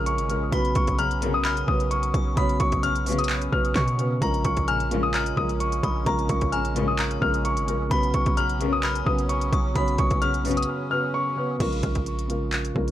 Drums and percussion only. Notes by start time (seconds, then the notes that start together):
0.06 closed hi-hat
0.18 closed hi-hat
0.30 closed hi-hat
0.52 kick, closed hi-hat
0.65 closed hi-hat
0.75 kick, closed hi-hat
0.87 kick, closed hi-hat
0.99 closed hi-hat
1.11 closed hi-hat
1.22 closed hi-hat
1.45 clap, closed hi-hat
1.57 closed hi-hat
1.68 kick
1.80 closed hi-hat
1.91 closed hi-hat
2.03 closed hi-hat
2.14 kick, closed hi-hat
2.37 kick, closed hi-hat
2.49 closed hi-hat
2.60 kick, closed hi-hat
2.72 kick, closed hi-hat
2.83 closed hi-hat
2.96 closed hi-hat
3.06 closed hi-hat, open hi-hat
3.12 closed hi-hat
3.19 closed hi-hat
3.24 closed hi-hat
3.29 clap, closed hi-hat
3.42 closed hi-hat
3.53 kick
3.65 closed hi-hat
3.76 kick, clap, closed hi-hat
3.88 closed hi-hat
3.99 closed hi-hat
4.22 kick, closed hi-hat
4.34 closed hi-hat
4.45 kick, closed hi-hat
4.57 kick, closed hi-hat
4.68 closed hi-hat
4.80 closed hi-hat
4.91 closed hi-hat
5.14 clap, closed hi-hat
5.26 closed hi-hat
5.37 kick
5.49 closed hi-hat
5.60 closed hi-hat
5.72 closed hi-hat
5.83 kick, closed hi-hat
6.06 kick, closed hi-hat
6.19 closed hi-hat
6.29 kick, closed hi-hat
6.41 kick, closed hi-hat
6.52 closed hi-hat
6.65 closed hi-hat
6.76 closed hi-hat
6.99 clap, closed hi-hat
7.11 closed hi-hat
7.22 kick
7.34 closed hi-hat
7.45 closed hi-hat
7.57 closed hi-hat
7.68 closed hi-hat
7.91 kick, closed hi-hat
8.03 closed hi-hat
8.14 kick, closed hi-hat
8.26 kick, closed hi-hat
8.37 closed hi-hat
8.50 closed hi-hat
8.61 closed hi-hat
8.83 clap, closed hi-hat
8.95 closed hi-hat
9.06 kick
9.19 closed hi-hat
9.29 closed hi-hat
9.41 closed hi-hat
9.53 kick, closed hi-hat
9.76 kick, closed hi-hat
9.88 closed hi-hat
9.98 kick, closed hi-hat
10.11 kick, closed hi-hat
10.22 closed hi-hat
10.34 closed hi-hat
10.45 closed hi-hat, open hi-hat
10.51 closed hi-hat
10.57 closed hi-hat
10.63 closed hi-hat
11.60 kick, closed hi-hat, crash
11.73 closed hi-hat
11.83 kick, closed hi-hat
11.95 kick, closed hi-hat
12.06 closed hi-hat
12.19 closed hi-hat
12.30 closed hi-hat
12.52 clap, closed hi-hat
12.65 closed hi-hat
12.76 kick
12.88 closed hi-hat